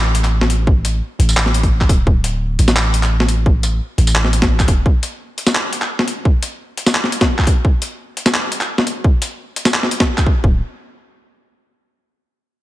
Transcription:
Already playing: 808-style bass A1
0.15 closed hi-hat
0.24 clap, closed hi-hat
0.41 snare
0.50 closed hi-hat
0.67 kick
0.85 closed hi-hat
1.19 808-style bass A1, closed hi-hat
1.29 tambourine
1.37 clap
1.46 snare
1.54 closed hi-hat
1.63 kick, closed hi-hat
1.81 kick, clap
1.89 808-style bass D1, kick, closed hi-hat
2.07 808-style bass D1, kick
2.24 closed hi-hat
2.59 808-style bass A1, closed hi-hat
2.68 snare, tambourine
2.76 clap
2.94 closed hi-hat
3.03 clap, closed hi-hat
3.20 snare
3.29 closed hi-hat
3.46 kick
3.63 closed hi-hat, tambourine
3.98 808-style bass A1, closed hi-hat
4.07 tambourine
4.15 clap
4.24 snare
4.33 closed hi-hat
4.42 kick, snare, closed hi-hat
4.60 kick, clap, tambourine
4.68 808-style bass E1, kick, closed hi-hat
4.86 kick
5.03 closed hi-hat
5.38 closed hi-hat
5.47 snare, tambourine
5.55 clap
5.73 closed hi-hat
5.82 clap, closed hi-hat
5.99 snare
6.08 closed hi-hat
6.25 kick
6.43 closed hi-hat
6.77 closed hi-hat
6.86 snare, tambourine
6.95 clap
7.04 snare
7.12 closed hi-hat
7.21 kick, snare, closed hi-hat
7.38 kick, clap
7.41 clap
7.44 kick, clap, closed hi-hat
7.65 kick
7.82 closed hi-hat
8.17 closed hi-hat
8.26 snare, tambourine
8.34 clap
8.52 closed hi-hat
8.61 clap, closed hi-hat
8.78 snare
8.87 closed hi-hat
9.04 kick
9.22 closed hi-hat, tambourine
9.56 closed hi-hat
9.65 snare, tambourine
9.74 clap
9.83 snare
9.91 closed hi-hat
10.00 kick, snare, closed hi-hat
10.18 kick, clap, tambourine
10.26 kick
10.44 808-style bass D1, kick

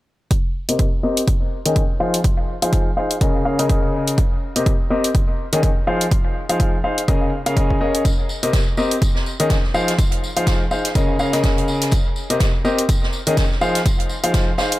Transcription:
0.31 kick, closed hi-hat
0.69 grand piano C3 C4 G4 A#4 D#5, closed hi-hat
0.79 kick, closed hi-hat
1.03 grand piano C4 G4 A#4 D#5
1.17 closed hi-hat
1.28 kick, closed hi-hat
1.66 grand piano D#3 C#4 G#4 A#4 D#5, closed hi-hat
1.76 kick, closed hi-hat
2.00 grand piano F3 D#4 G#4 C5 F5
2.14 closed hi-hat
2.24 kick, closed hi-hat
2.62 grand piano F3 D#4 G#4 C5 F5, closed hi-hat
2.73 kick, closed hi-hat
2.97 grand piano D#4 G#4 C5 F5
3.11 closed hi-hat
3.21 grand piano C#3 C#4 G#4 A#4 D#5, kick, closed hi-hat
3.45 grand piano C#3 C#4 G#4 A#4 F5
3.59 grand piano C#3 C#4 G#4 A#4 D#5, closed hi-hat
3.69 kick, closed hi-hat
4.08 closed hi-hat
4.18 kick, closed hi-hat
4.56 grand piano C3 C4 G4 A#4 D#5, closed hi-hat
4.66 kick, closed hi-hat
4.90 grand piano C4 G4 A#4 D#5
5.04 closed hi-hat
5.15 kick, closed hi-hat
5.53 grand piano D#3 C#4 G#4 A#4 D#5, closed hi-hat
5.63 kick, closed hi-hat
5.87 grand piano F3 D#4 G#4 C5 F5
6.01 closed hi-hat
6.11 kick, closed hi-hat
6.49 grand piano F3 D#4 G#4 C5 F5, closed hi-hat
6.60 kick, closed hi-hat
6.84 grand piano D#4 G#4 C5 F5
6.98 closed hi-hat
7.08 grand piano C#3 C#4 G#4 A#4 D#5, kick, closed hi-hat
7.46 grand piano C#3 C#4 G#4 A#4 F5, closed hi-hat
7.57 grand piano C#3 C#4 G#4 A#4 D#5, kick, closed hi-hat
7.70 kick
7.81 grand piano C#4 G#4 A#4 D#5
7.95 closed hi-hat
8.05 kick, closed hi-hat, tambourine
8.29 tambourine
8.43 grand piano C3 C4 G4 A#4 D#5, closed hi-hat
8.53 kick, snare, closed hi-hat, tambourine
8.77 grand piano C4 G4 A#4 D#5, tambourine
8.91 closed hi-hat
9.02 kick, closed hi-hat, tambourine
9.15 snare
9.26 tambourine
9.40 grand piano D#3 C#4 G#4 A#4 D#5, closed hi-hat
9.50 kick, snare, closed hi-hat, tambourine
9.63 snare
9.74 grand piano F3 D#4 G#4 C5 F5, tambourine
9.88 snare, closed hi-hat
9.99 kick, closed hi-hat, tambourine
10.12 closed hi-hat
10.24 tambourine
10.37 grand piano F3 D#4 G#4 C5 F5, closed hi-hat
10.46 kick, snare, closed hi-hat, tambourine
10.71 grand piano D#4 G#4 C5 F5, tambourine
10.85 snare, closed hi-hat
10.95 grand piano C#3 C#4 G#4 A#4 D#5, kick, closed hi-hat, tambourine
11.19 grand piano C#3 C#4 G#4 A#4 F5, tambourine
11.33 grand piano C#3 C#4 G#4 A#4 D#5, snare, closed hi-hat
11.43 kick, snare, closed hi-hat, tambourine
11.58 closed hi-hat
11.68 tambourine
11.81 snare, closed hi-hat
11.91 kick, closed hi-hat, tambourine
12.16 tambourine
12.30 grand piano C3 C4 G4 A#4 D#5, closed hi-hat
12.40 kick, snare, closed hi-hat, tambourine
12.65 grand piano C4 G4 A#4 D#5, tambourine
12.79 closed hi-hat
12.89 kick, closed hi-hat, tambourine
13.03 snare
13.13 tambourine
13.27 grand piano D#3 C#4 G#4 A#4 D#5, closed hi-hat
13.37 kick, snare, closed hi-hat, tambourine
13.51 snare
13.61 grand piano F3 D#4 G#4 C5 F5, tambourine
13.75 snare, closed hi-hat
13.86 kick, closed hi-hat, tambourine
14.00 closed hi-hat
14.09 tambourine
14.24 grand piano F3 D#4 G#4 C5 F5, closed hi-hat
14.34 kick, snare, closed hi-hat, tambourine
14.58 grand piano D#4 G#4 C5 F5, snare, tambourine
14.72 closed hi-hat

